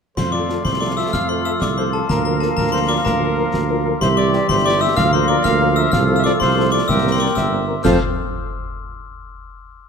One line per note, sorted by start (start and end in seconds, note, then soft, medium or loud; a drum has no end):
0.17 0.57 F2 medium
0.17 2.05 F3 medium
0.17 2.05 A3 medium
0.17 2.05 A4 medium
0.17 0.32 C5 medium
0.17 2.05 F5 medium
0.17 0.32 C6 medium
0.17 concert bass drum medium
0.17 snare medium
0.17 crash medium
0.32 0.39 F3 soft
0.32 0.39 F4 medium
0.32 0.39 A4 medium
0.32 0.62 D5 medium
0.32 0.62 D6 medium
0.49 0.55 F3 medium
0.49 0.55 F4 medium
0.49 0.55 A4 medium
0.49 snare soft
0.64 1.06 C2 medium
0.64 0.72 C5 medium
0.64 0.80 C6 medium
0.64 concert bass drum medium
0.64 snare medium
0.80 0.87 F3 medium
0.80 0.87 F4 medium
0.80 0.88 A4 soft
0.80 0.88 D5 medium
0.80 0.96 D6 medium
0.97 1.03 F3 soft
0.97 1.03 F4 medium
0.97 1.03 A4 soft
0.97 1.15 E5 medium
0.97 1.12 E6 medium
1.13 1.53 F2 medium
1.13 1.31 F5 medium
1.13 1.28 F6 medium
1.13 concert bass drum medium
1.13 snare medium
1.29 1.35 F3 medium
1.29 1.35 F4 medium
1.29 1.35 A4 medium
1.29 1.43 C5 medium
1.29 1.44 C6 medium
1.44 1.51 F3 medium
1.44 1.51 F4 medium
1.44 1.51 A4 medium
1.44 1.51 E5 medium
1.44 1.60 E6 medium
1.60 2.02 C2 medium
1.60 1.68 D5 medium
1.60 1.76 D6 medium
1.60 concert bass drum medium
1.60 snare medium
1.77 1.83 F3 soft
1.77 1.83 F4 medium
1.77 1.83 A4 medium
1.77 1.92 C5 medium
1.77 1.92 C6 medium
1.93 1.99 F3 soft
1.93 1.99 F4 medium
1.93 2.08 A4 medium
1.93 1.99 A4 medium
1.93 2.08 A5 medium
2.09 2.49 D2 medium
2.09 3.97 F3 medium
2.09 3.98 A#3 medium
2.09 4.01 A#4 medium
2.09 2.24 A#4 medium
2.09 3.97 F5 medium
2.09 2.24 A#5 medium
2.09 concert bass drum medium
2.09 snare medium
2.25 2.31 F3 medium
2.25 2.32 F4 medium
2.25 2.40 A#4 medium
2.25 2.32 A#4 medium
2.25 2.40 A#5 medium
2.40 2.47 F3 medium
2.40 2.47 F4 medium
2.40 2.48 A4 medium
2.40 2.47 A#4 medium
2.40 2.56 A5 medium
2.40 snare medium
2.57 2.97 D2 medium
2.57 2.72 A#4 medium
2.57 2.72 A#5 medium
2.57 concert bass drum medium
2.57 snare medium
2.72 2.79 F3 medium
2.72 2.79 F4 medium
2.72 2.79 A#4 medium
2.72 2.80 C5 medium
2.72 2.88 C6 medium
2.89 2.95 F3 soft
2.89 2.95 F4 medium
2.89 2.95 A#4 soft
2.89 2.96 D5 medium
2.89 3.04 D6 medium
3.05 3.45 D2 medium
3.05 3.97 A#4 loud
3.05 3.97 A#5 medium
3.05 concert bass drum medium
3.05 snare medium
3.20 3.26 F3 medium
3.20 3.27 F4 medium
3.20 3.27 A#4 medium
3.37 3.43 F3 medium
3.37 3.43 F4 medium
3.37 3.43 A#4 medium
3.54 3.93 D2 medium
3.54 concert bass drum medium
3.54 snare medium
3.68 3.74 F3 medium
3.68 3.75 F4 medium
3.68 3.74 A#4 medium
3.85 3.91 F3 medium
3.85 3.91 F4 medium
3.85 3.91 A#4 medium
4.00 4.41 C2 medium
4.00 4.93 E3 medium
4.00 4.96 G3 medium
4.00 4.93 G4 medium
4.00 4.09 C5 loud
4.00 4.93 E5 medium
4.00 4.16 C6 medium
4.00 concert bass drum medium
4.00 snare medium
4.00 crash soft
4.16 4.23 G3 medium
4.16 4.22 E4 medium
4.16 4.23 G4 medium
4.16 4.47 D5 loud
4.16 4.47 D6 medium
4.33 4.39 G3 medium
4.33 4.39 E4 medium
4.33 4.39 G4 medium
4.33 snare soft
4.49 4.89 G1 medium
4.49 4.56 C5 medium
4.49 4.64 C6 loud
4.49 concert bass drum medium
4.49 snare medium
4.65 4.71 G3 medium
4.65 4.71 E4 medium
4.65 4.71 G4 medium
4.65 4.83 D5 loud
4.65 4.80 D6 medium
4.81 4.87 G3 medium
4.81 4.87 E4 medium
4.81 4.87 G4 medium
4.81 4.96 E5 loud
4.81 4.96 E6 medium
4.96 5.37 D2 medium
4.96 6.89 F3 medium
4.96 5.93 A#3 medium
4.96 5.93 A#4 medium
4.96 5.11 F5 loud
4.96 6.72 F5 medium
4.96 5.12 F6 loud
4.96 concert bass drum medium
4.96 snare medium
5.13 5.19 F3 medium
5.13 5.19 F4 medium
5.13 5.19 A#4 medium
5.13 5.30 C5 medium
5.13 5.28 C6 medium
5.28 5.35 F3 medium
5.28 5.35 F4 medium
5.28 5.35 A#4 medium
5.28 5.44 D5 loud
5.28 5.43 D6 medium
5.44 5.85 D2 medium
5.44 5.79 F5 loud
5.44 5.74 F6 loud
5.44 concert bass drum medium
5.44 snare medium
5.61 5.67 F3 medium
5.61 5.67 F4 medium
5.61 5.67 A#4 medium
5.76 5.83 F3 medium
5.76 5.83 F4 medium
5.76 5.83 A#4 medium
5.76 5.92 E5 loud
5.76 5.91 E6 loud
5.92 6.33 C2 medium
5.92 6.89 A3 medium
5.92 6.72 A4 medium
5.92 6.04 F5 loud
5.92 6.14 F6 loud
5.92 concert bass drum medium
5.92 snare medium
6.08 6.14 F3 medium
6.08 6.14 C4 medium
6.08 6.14 A4 medium
6.16 6.22 E5 medium
6.16 6.24 E6 medium
6.24 6.31 F3 medium
6.24 6.31 C4 medium
6.24 6.31 A4 medium
6.24 6.32 D5 loud
6.24 6.39 D6 medium
6.24 snare soft
6.40 6.81 C2 medium
6.40 6.70 C5 loud
6.40 6.70 C6 medium
6.40 concert bass drum medium
6.40 snare medium
6.57 6.63 F3 medium
6.57 6.63 C4 medium
6.57 6.63 A4 medium
6.72 6.78 F3 medium
6.72 6.79 C4 medium
6.72 6.78 A4 medium
6.72 6.90 D5 medium
6.72 6.87 D6 medium
6.88 7.28 C2 medium
6.88 7.69 G3 medium
6.88 7.68 A#3 medium
6.88 7.69 A#4 medium
6.88 7.13 E5 loud
6.88 7.64 G5 medium
6.88 7.10 E6 medium
6.88 concert bass drum medium
6.88 snare medium
7.04 7.10 G3 medium
7.04 7.10 C4 medium
7.04 7.10 A#4 medium
7.12 7.20 C5 medium
7.12 7.20 C6 medium
7.20 7.26 G3 medium
7.20 7.26 C4 medium
7.20 7.26 A#4 medium
7.20 7.28 D5 medium
7.20 7.35 D6 medium
7.35 7.76 G1 medium
7.35 7.81 E5 medium
7.35 7.80 E6 medium
7.35 concert bass drum medium
7.35 snare medium
7.51 7.57 G3 soft
7.51 7.57 C4 medium
7.51 7.58 A#4 medium
7.68 7.74 G3 soft
7.68 7.74 C4 medium
7.68 7.74 A#4 soft
7.83 7.97 F2 medium
7.83 7.97 F3 medium
7.83 7.98 A3 medium
7.83 7.97 C4 medium
7.83 7.98 C4 medium
7.83 7.97 A4 medium
7.83 7.97 C5 medium
7.83 7.98 F5 medium
7.83 7.97 A5 medium
7.83 8.02 F6 medium
7.83 concert bass drum loud
7.83 snare loud
7.83 crash medium